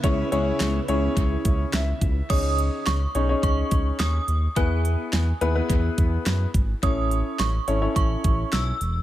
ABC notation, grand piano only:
X:1
M:4/4
L:1/16
Q:1/4=106
K:C#m
V:1 name="Grand piano"
[CEGc]2 [CEGc]3 z [CEGc]6 e4 | [CDGc]4- [CDGc] z [CDGc] [CDGc]6 z3 | [B,EGB]4- [B,EGB] z [B,EGB] [B,EGB]6 z3 | [CEAc]4- [CEAc] z [CEAc] [CEAc]6 z3 |]